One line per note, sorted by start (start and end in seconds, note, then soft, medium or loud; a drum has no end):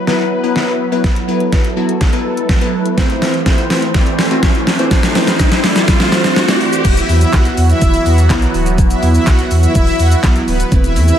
0.00 2.94 F#3 medium
0.00 2.94 B3 medium
0.00 6.81 E4 medium
0.00 1.02 B4 medium
0.00 riser medium
0.07 0.34 F#3 medium
0.07 0.34 B3 medium
0.07 0.34 E4 medium
0.07 0.34 B4 loud
0.07 snare medium
0.43 0.79 F#3 medium
0.43 0.79 B3 medium
0.43 0.80 E4 medium
0.43 0.80 B4 loud
0.56 snare medium
0.92 1.19 F#3 medium
0.92 1.19 B3 medium
0.92 1.19 E4 medium
0.92 1.19 B4 loud
1.04 2.96 A4 medium
1.04 kick loud
1.04 snare medium
1.04 closed hi-hat medium
1.16 closed hi-hat medium
1.28 1.64 F#3 loud
1.28 1.64 B3 medium
1.28 1.64 E4 medium
1.28 1.64 B4 loud
1.40 closed hi-hat soft
1.52 kick loud
1.52 snare medium
1.52 closed hi-hat medium
1.64 closed hi-hat medium
1.76 2.03 F#3 medium
1.76 2.04 B3 medium
1.76 2.04 E4 medium
1.76 2.04 F#4 loud
1.89 closed hi-hat medium
2.01 kick loud
2.01 snare medium
2.01 closed hi-hat medium
2.13 2.49 F#3 medium
2.13 2.49 B3 medium
2.13 2.49 E4 medium
2.13 2.49 B4 loud
2.13 closed hi-hat medium
2.37 closed hi-hat medium
2.49 kick loud
2.49 snare medium
2.49 closed hi-hat medium
2.61 2.88 F#3 loud
2.61 2.88 B3 medium
2.61 2.88 E4 medium
2.61 2.88 B4 loud
2.61 closed hi-hat medium
2.86 closed hi-hat medium
2.97 3.33 E3 loud
2.97 6.81 E3 medium
2.97 3.33 A3 medium
2.97 6.81 A3 medium
2.97 3.34 C4 medium
2.97 6.81 C4 medium
2.97 3.34 E4 medium
2.97 4.89 C5 medium
2.97 3.34 C5 loud
2.97 kick loud
2.97 snare medium
2.97 closed hi-hat medium
3.10 closed hi-hat medium
3.22 snare medium
3.22 open hi-hat medium
3.34 closed hi-hat soft
3.46 3.82 E3 loud
3.46 3.82 A3 medium
3.46 3.82 C4 medium
3.46 3.82 E4 medium
3.46 3.82 C5 loud
3.46 kick loud
3.46 snare medium
3.46 closed hi-hat medium
3.58 closed hi-hat medium
3.70 snare medium
3.70 open hi-hat medium
3.82 closed hi-hat medium
3.94 4.21 E3 medium
3.94 4.21 A3 medium
3.94 4.21 C4 medium
3.94 4.21 E4 medium
3.94 4.21 D5 loud
3.94 kick loud
3.94 snare medium
3.94 closed hi-hat medium
4.06 closed hi-hat medium
4.19 snare medium
4.19 open hi-hat medium
4.31 4.67 E3 medium
4.31 4.67 A3 medium
4.31 4.67 C4 medium
4.31 4.67 E4 medium
4.31 4.67 F#4 loud
4.31 closed hi-hat medium
4.43 kick loud
4.43 snare loud
4.43 closed hi-hat medium
4.55 closed hi-hat medium
4.67 snare loud
4.67 open hi-hat medium
4.79 5.06 E3 medium
4.79 5.06 A3 medium
4.79 5.06 C4 medium
4.79 5.06 E4 medium
4.79 5.06 C5 medium
4.79 closed hi-hat medium
4.91 6.83 C5 medium
4.91 kick loud
4.91 snare loud
4.91 closed hi-hat medium
4.91 shaker medium
5.03 snare loud
5.03 closed hi-hat medium
5.03 shaker medium
5.15 5.51 E3 medium
5.15 5.51 A3 medium
5.15 5.51 C4 medium
5.15 5.51 E4 medium
5.15 5.51 C5 loud
5.15 snare loud
5.15 open hi-hat medium
5.15 shaker medium
5.27 snare loud
5.27 closed hi-hat medium
5.27 shaker medium
5.39 kick loud
5.39 snare loud
5.39 closed hi-hat medium
5.39 shaker medium
5.52 snare loud
5.52 closed hi-hat medium
5.52 shaker medium
5.64 5.91 E3 loud
5.64 5.91 A3 medium
5.64 5.91 C4 medium
5.64 5.91 E4 medium
5.64 5.91 D5 loud
5.64 snare loud
5.64 open hi-hat medium
5.64 shaker medium
5.76 snare loud
5.76 closed hi-hat medium
5.76 shaker medium
5.88 kick loud
5.88 snare loud
5.88 closed hi-hat medium
5.88 shaker medium
6.00 6.36 E3 loud
6.00 6.36 A3 medium
6.00 6.36 C4 medium
6.00 6.36 E4 medium
6.00 6.36 C5 loud
6.00 snare loud
6.00 closed hi-hat medium
6.00 shaker medium
6.12 snare loud
6.12 open hi-hat medium
6.12 shaker medium
6.24 snare loud
6.24 closed hi-hat medium
6.24 shaker medium
6.36 snare loud
6.36 closed hi-hat medium
6.36 shaker medium
6.48 6.75 E3 loud
6.48 6.75 A3 medium
6.48 6.75 C4 medium
6.48 6.75 E4 medium
6.48 6.75 D5 loud
6.48 snare loud
6.48 closed hi-hat medium
6.48 shaker medium
6.61 open hi-hat medium
6.61 shaker soft
6.73 closed hi-hat medium
6.73 shaker medium
6.85 7.00 E1 loud
6.85 10.68 E3 medium
6.85 7.03 F#3 medium
6.85 10.68 F#3 medium
6.85 10.68 B3 medium
6.85 7.03 B3 medium
6.85 7.03 E4 medium
6.85 10.68 F#4 loud
6.85 kick loud
6.85 closed hi-hat medium
6.85 crash loud
6.85 shaker medium
6.97 7.06 E4 medium
6.97 7.05 E5 medium
6.97 closed hi-hat medium
6.97 shaker medium
7.09 7.25 E2 loud
7.09 7.27 F#3 medium
7.09 7.27 B3 medium
7.09 7.27 E4 medium
7.09 open hi-hat medium
7.09 shaker medium
7.21 7.30 E4 medium
7.21 7.30 E5 medium
7.21 closed hi-hat soft
7.21 shaker medium
7.33 7.49 B1 loud
7.33 8.05 F#3 medium
7.33 7.42 F#4 medium
7.33 7.41 F#5 medium
7.33 kick loud
7.33 snare medium
7.33 clap loud
7.33 closed hi-hat medium
7.33 shaker medium
7.45 closed hi-hat medium
7.45 shaker medium
7.57 7.73 E2 loud
7.57 open hi-hat medium
7.57 shaker medium
7.69 7.78 E4 medium
7.69 7.78 E5 medium
7.69 closed hi-hat medium
7.69 shaker medium
7.82 7.97 E1 loud
7.82 7.99 E4 medium
7.82 7.98 E5 medium
7.82 kick loud
7.82 closed hi-hat medium
7.82 shaker medium
7.94 closed hi-hat medium
7.94 shaker medium
8.06 8.31 E2 loud
8.06 8.15 F#4 medium
8.06 8.14 F#5 medium
8.06 open hi-hat medium
8.06 shaker medium
8.18 closed hi-hat medium
8.18 shaker medium
8.30 8.46 B1 loud
8.30 8.66 F#3 loud
8.30 8.66 B3 loud
8.30 8.66 E4 loud
8.30 kick loud
8.30 snare medium
8.30 clap loud
8.30 closed hi-hat medium
8.30 shaker medium
8.42 closed hi-hat medium
8.42 shaker medium
8.54 8.80 D1 medium
8.54 open hi-hat medium
8.54 shaker soft
8.66 closed hi-hat medium
8.66 shaker medium
8.78 8.94 E1 loud
8.78 8.96 F#3 medium
8.78 8.96 B3 medium
8.78 8.96 E4 medium
8.78 kick loud
8.78 closed hi-hat medium
8.78 shaker medium
8.90 8.99 E4 medium
8.90 8.99 E5 medium
8.90 closed hi-hat medium
8.90 shaker medium
9.02 9.18 E2 loud
9.02 9.20 F#3 medium
9.02 9.21 B3 medium
9.02 9.21 E4 medium
9.02 open hi-hat medium
9.02 shaker medium
9.15 9.24 E4 medium
9.15 9.23 E5 medium
9.15 closed hi-hat soft
9.15 shaker medium
9.27 9.42 B1 loud
9.27 9.98 F#3 medium
9.27 9.99 E4 medium
9.27 9.36 F#4 medium
9.27 9.35 F#5 medium
9.27 kick loud
9.27 snare medium
9.27 clap loud
9.27 closed hi-hat medium
9.27 shaker medium
9.39 closed hi-hat medium
9.39 shaker medium
9.51 9.67 E2 loud
9.51 open hi-hat medium
9.51 shaker medium
9.63 9.72 E4 medium
9.63 9.71 E5 medium
9.63 closed hi-hat medium
9.63 shaker medium
9.75 9.91 E1 loud
9.75 9.92 E4 medium
9.75 9.92 E5 medium
9.75 kick loud
9.75 closed hi-hat medium
9.75 shaker medium
9.87 closed hi-hat medium
9.87 shaker medium
9.99 10.15 E2 loud
9.99 10.08 F#4 medium
9.99 10.08 F#5 medium
9.99 open hi-hat medium
9.99 shaker medium
10.12 closed hi-hat medium
10.12 shaker medium
10.23 10.39 B1 loud
10.23 10.59 F#3 loud
10.23 10.59 B3 loud
10.23 10.60 E4 loud
10.23 kick loud
10.23 snare medium
10.23 clap loud
10.23 closed hi-hat medium
10.23 shaker medium
10.36 closed hi-hat medium
10.36 shaker medium
10.48 10.63 D1 loud
10.48 10.57 B3 medium
10.48 10.56 B4 medium
10.48 open hi-hat medium
10.48 shaker soft
10.60 closed hi-hat medium
10.60 shaker medium
10.72 10.98 E1 loud
10.72 11.19 C3 medium
10.72 11.19 E3 medium
10.72 10.90 A3 medium
10.72 11.19 A3 medium
10.72 10.90 C4 medium
10.72 11.19 E4 medium
10.72 10.90 E4 medium
10.72 kick loud
10.72 closed hi-hat medium
10.72 shaker medium
10.84 10.93 E4 medium
10.84 10.92 E5 medium
10.84 closed hi-hat medium
10.84 shaker medium
10.96 11.12 E2 loud
10.96 11.14 A3 medium
10.96 11.14 C4 medium
10.96 11.14 E4 medium
10.96 open hi-hat medium
10.96 shaker medium
11.08 11.17 E4 medium
11.08 11.17 E5 medium
11.08 closed hi-hat soft
11.08 shaker medium